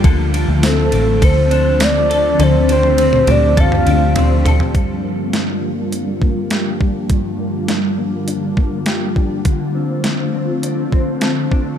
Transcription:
Already playing: ambient pad D3 F3 F4, clean electric guitar D4
0.04 fingered electric bass D2, clean electric guitar D3 A4, ambient pad A3 C4, kick, ride
0.34 clean electric guitar D4, ride
0.48 fingered electric bass D2
0.63 clean electric guitar C4, soft synth lead A4, snare, ride, tambourine
0.92 fingered electric bass A1, clean electric guitar D4, ride
1.22 fingered electric bass D2, clean electric guitar A4, soft synth lead C5, kick, ride
1.51 clean electric guitar D4, ride
1.80 clean electric guitar C4, soft synth lead D5, snare, ride, tambourine
2.10 clean electric guitar A4, ride
2.39 fingered electric bass D2, clean electric guitar D3 A4, ambient pad G4, soft synth lead C5, high tom, ride
2.68 clean electric guitar D4, soft synth lead C5, ride
2.83 high tom
2.98 clean electric guitar C4, ride
3.13 mid tom
3.27 fingered electric bass D2, clean electric guitar D4, soft synth lead D5, mid tom, ride
3.57 clean electric guitar A4, soft synth lead F5, kick, mid tom, ride
3.72 mid tom
3.86 fingered electric bass D2, clean electric guitar D4, ride
4.15 clean electric guitar C4, floor tom, ride
4.45 clean electric guitar A4, floor tom, ride
4.60 floor tom
4.74 clean electric guitar G2, ambient pad D3 F3 G3 A#3 F4, kick, closed hi-hat
5.04 clean electric guitar A#3
5.33 clean electric guitar D4, snare, closed hi-hat
5.62 clean electric guitar A#3
5.92 clean electric guitar D4, closed hi-hat
6.21 clean electric guitar A#3, kick
6.50 clean electric guitar G4, snare, closed hi-hat
6.80 clean electric guitar D4, kick
7.10 clean electric guitar G2, kick, closed hi-hat
7.39 clean electric guitar A#3
7.68 clean electric guitar D4, snare, closed hi-hat
7.98 clean electric guitar A#3
8.28 clean electric guitar D4, closed hi-hat
8.57 clean electric guitar A#3, kick
8.86 clean electric guitar G4, snare, closed hi-hat
9.16 clean electric guitar D4, kick
9.45 clean electric guitar D3, ambient pad F3 A3 C4, kick, closed hi-hat
9.75 clean electric guitar C4
10.04 clean electric guitar D4, snare, closed hi-hat
10.34 clean electric guitar C4
10.63 clean electric guitar D4, closed hi-hat
10.92 clean electric guitar C4, kick
11.21 clean electric guitar A4, snare, closed hi-hat
11.51 clean electric guitar D4, kick

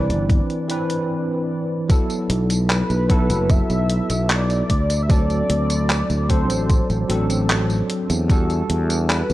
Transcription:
Already playing: fretless electric bass C2, tine electric piano E3 C4 D4 B4, soft synth lead D5
0.10 fretless electric bass G1, closed hi-hat
0.30 kick, closed hi-hat
0.50 closed hi-hat
0.68 tine electric piano E3 C4 D4 B4, closed hi-hat
0.90 closed hi-hat
1.88 tine electric piano F#3 B3 E4 A4, kick, closed hi-hat, tambourine
2.10 closed hi-hat, tambourine
2.30 fretless electric bass B1, closed hi-hat
2.50 closed hi-hat, tambourine
2.70 soft synth lead B4, clap, closed hi-hat, tambourine
2.90 fretless electric bass B1, closed hi-hat, tambourine
3.08 tine electric piano F#3 B3 E4 A4, kick, closed hi-hat
3.30 fretless electric bass F#1, closed hi-hat, tambourine
3.49 soft synth lead E5, kick, closed hi-hat, tambourine
3.70 fretless electric bass B1, closed hi-hat, tambourine
3.90 closed hi-hat
4.10 fretless electric bass B1, closed hi-hat, tambourine
4.29 soft synth lead D5, clap, closed hi-hat, tambourine
4.50 closed hi-hat, tambourine
4.70 fretless electric bass D2, kick, closed hi-hat
4.90 closed hi-hat, tambourine
5.03 soft synth lead E5
5.08 tine electric piano F#3 C4 D4 A4, soft synth lead D5, kick, closed hi-hat, tambourine
5.30 closed hi-hat, tambourine
5.50 fretless electric bass D2, closed hi-hat
5.70 closed hi-hat, tambourine
5.90 clap, closed hi-hat, tambourine
6.10 fretless electric bass D2, closed hi-hat, tambourine
6.29 tine electric piano F#3 C4 D4 A4, soft synth lead C5, kick, closed hi-hat
6.50 fretless electric bass A1, closed hi-hat, tambourine
6.70 kick, closed hi-hat, tambourine
6.90 fretless electric bass A1, closed hi-hat, tambourine
7.08 fretless electric bass A1, tine electric piano F#3 C4 D4 A4, closed hi-hat
7.30 closed hi-hat, tambourine
7.50 clap, closed hi-hat, tambourine
7.70 closed hi-hat, tambourine
7.90 closed hi-hat
8.10 fretless electric bass E2, closed hi-hat, tambourine
8.28 tine electric piano G3 D4 F#4 A4, kick, closed hi-hat, tambourine
8.50 closed hi-hat, tambourine
8.70 fretless electric bass E2, closed hi-hat
8.90 closed hi-hat, tambourine
9.09 soft synth lead B4, clap, closed hi-hat, tambourine
9.30 fretless electric bass E2, closed hi-hat, tambourine

